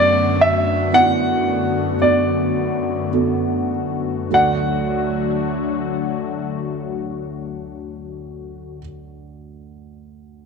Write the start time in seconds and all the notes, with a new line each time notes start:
Already playing: F#2 D3 F#3 A3 B3 F#4 D5, downlifter
0.41 E5
0.93 B3 E4 D5 F#5
0.99 F#4
2.01 B3 F#4 D5
3.13 B3 F#4 A4
4.30 D2 D3 F#3 A3 F#4 D5 F#5